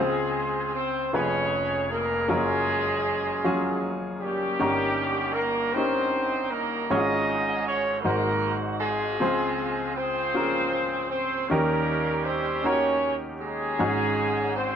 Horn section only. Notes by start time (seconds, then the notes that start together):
Already playing: G#3 C4 F4 G#4
0.75 C4 C5
1.14 C#4 G#4 C#5
1.91 A#3 A#4
2.30 G#3 C#4 F4 G#4
4.21 G3 A#3 C#4 G4
5.33 A#3 A#4
5.74 C4 D#4 C5
6.52 A#3 A#4
6.90 D#4 D#5
6.94 G#3 G#4
7.66 C#4 C#5
8.04 A#3 D#4 F#4 A#4
8.80 F3 G#3 C4 F4 G#4
9.96 C4 F4 G#4 C5
11.10 C4 C5
11.48 G3 A#3 C#4 G4 A#4
12.25 C4 C5
12.65 C#4 C#5
13.41 G#3 C#4 D#4 G#4
14.56 C4 C5